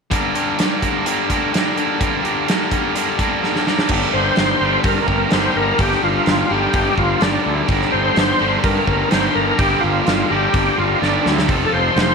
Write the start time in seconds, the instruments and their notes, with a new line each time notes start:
0.10 distorted electric guitar G2 D3 G3 A#3 D4 A#4, kick, closed hi-hat
0.33 distorted electric guitar G2 D3 G3 A#3 D4 A#4, closed hi-hat
0.56 distorted electric guitar G2 D3 G3 A#3 D4 A#4, snare, closed hi-hat
0.81 distorted electric guitar G2 D3 G3 A#3 D4 A#4, kick, closed hi-hat
1.04 distorted electric guitar G2 D3 G3 A#3 D4 A#4, closed hi-hat
1.28 distorted electric guitar G2 D3 G3 A#3 D4 A#4, kick, closed hi-hat
1.51 distorted electric guitar G2 D3 G3 A#3 D4 A#4, closed hi-hat
1.55 snare
1.75 distorted electric guitar G2 D3 G3 A#3 D4 A#4, closed hi-hat
1.99 distorted electric guitar G2 D3 G3 A#3 D4 A#4, kick, closed hi-hat
2.23 distorted electric guitar G2 D3 G3 A#3 D4 A#4, closed hi-hat
2.47 distorted electric guitar G2 D3 G3 A#3 D4 A#4, snare, closed hi-hat
2.70 distorted electric guitar G2 D3 G3 A#3 D4 A#4, kick, closed hi-hat
2.94 distorted electric guitar G2 D3 G3 A#3 D4 A#4, closed hi-hat
3.17 distorted electric guitar G2 D3 G3 A#3 D4 A#4, kick, closed hi-hat
3.41 distorted electric guitar G2 D3 G3 A#3 D4 A#4, snare
3.56 snare
3.65 distorted electric guitar G2 D3 G3 A#3 D4 A#4, snare
3.79 snare
3.88 fingered electric bass G1, overdriven electric guitar G2 D3, distorted electric guitar G3 D4 G4, kick, crash
3.92 overdriven electric guitar G3, distorted electric guitar A#4
4.02 snare
4.13 fingered electric bass G1, tonewheel organ C5
4.36 fingered electric bass G1, snare, open hi-hat
4.59 fingered electric bass G1, overdriven electric guitar D3, distorted electric guitar G3 D4 G4 A#4
4.64 overdriven electric guitar G2
4.84 fingered electric bass G2, tonewheel organ A#4, kick, open hi-hat
5.08 fingered electric bass G1, tonewheel organ A#4, kick
5.30 fingered electric bass G1, overdriven electric guitar G2 D3, distorted electric guitar G3 D4 G4, tonewheel organ C5, snare, open hi-hat
5.34 overdriven electric guitar G3, distorted electric guitar A#4
5.56 fingered electric bass G1, tonewheel organ A#4
5.78 fingered electric bass G1, overdriven electric guitar G2 D3, distorted electric guitar G3 D4 G4, tonewheel organ G4, kick, open hi-hat
5.82 distorted electric guitar A#4
5.91 snare
6.03 fingered electric bass G1, tonewheel organ F4
6.26 fingered electric bass G1, snare, open hi-hat
6.49 fingered electric bass G1, overdriven electric guitar D3, distorted electric guitar G3 D4 G4 A#4, tonewheel organ G4
6.54 overdriven electric guitar G2
6.73 fingered electric bass G1, kick, open hi-hat
6.97 fingered electric bass G1, tonewheel organ F4, kick
7.19 fingered electric bass G1, overdriven electric guitar G2 D3, distorted electric guitar G3 D4 G4, tonewheel organ D4, snare, open hi-hat
7.24 overdriven electric guitar G3, distorted electric guitar A#4
7.46 fingered electric bass D2
7.68 fingered electric bass G1, overdriven electric guitar G2 D3, distorted electric guitar G3 D4 G4, kick, open hi-hat
7.72 distorted electric guitar A#4
7.82 snare
7.92 fingered electric bass G1, tonewheel organ C5
8.16 fingered electric bass G1, snare, open hi-hat
8.39 fingered electric bass G1, overdriven electric guitar G2 D3 G3, distorted electric guitar D4 G4 A#4
8.43 distorted electric guitar G3
8.64 fingered electric bass G2, tonewheel organ A#4, kick, open hi-hat
8.87 fingered electric bass G1, tonewheel organ A#4, kick
9.10 fingered electric bass G1, overdriven electric guitar G2 D3, distorted electric guitar G3 D4 G4 A#4, tonewheel organ C5, snare, open hi-hat
9.15 overdriven electric guitar G3
9.35 fingered electric bass G1, tonewheel organ A#4
9.57 fingered electric bass G1, overdriven electric guitar G2 D3, distorted electric guitar G3 D4 G4 A#4, tonewheel organ G4, kick, open hi-hat
9.62 overdriven electric guitar G3
9.81 fingered electric bass G1, tonewheel organ F4
10.07 fingered electric bass G1, snare, open hi-hat
10.29 fingered electric bass G1, overdriven electric guitar D3, distorted electric guitar G3 D4 G4 A#4, tonewheel organ G4
10.33 overdriven electric guitar G2
10.54 fingered electric bass G1, kick, open hi-hat
10.77 fingered electric bass G1, tonewheel organ F4
10.99 fingered electric bass G1, overdriven electric guitar G2 D3, distorted electric guitar G3 D4 G4 A#4, tonewheel organ D4, snare
11.04 overdriven electric guitar G3
11.26 fingered electric bass D2, snare
11.38 snare
11.48 fingered electric bass F1, overdriven electric guitar F2 C3, distorted electric guitar F3 A3 C4 F4 A4, kick, open hi-hat
11.52 overdriven electric guitar F3
11.66 tonewheel organ A4
11.73 fingered electric bass F1, tonewheel organ C5
11.96 fingered electric bass F1, snare, open hi-hat